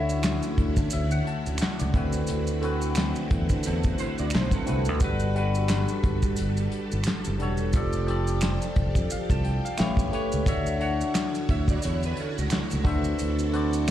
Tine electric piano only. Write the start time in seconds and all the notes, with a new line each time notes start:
Already playing: D3 A3 E4 F#4 C#5 E5
0.93 E5
1.12 F#5
1.27 A5
1.61 F#5
1.79 D5
1.94 D3 A3 C4 E4 F#4 B4
2.61 D3 A3 C4 E4 F#4 B4
4.65 D3 A3 C4 E4 F#4
4.69 B4
5.01 G3 D4 F#4 A4 B4
5.34 G3 D4 F#4 A4 B4
7.39 G3 D4 F#4 A4
7.43 C#5
7.73 F3 F4 G4 A4 D5
8.07 F3 F4 G4 A4 D5
9.12 F5
9.31 A5
9.45 G5
9.65 F5
9.78 A3 E4 G4 B4 C#5
10.11 A3 E4 G4 B4 C#5
10.45 D3 D4 F#4 C#5 E5
10.79 D3 D4 F#4 C#5
10.83 F#5
12.84 D3 D4 F#4 B4 C5 E5
13.52 D3 D4 F#4 B4 C5 D5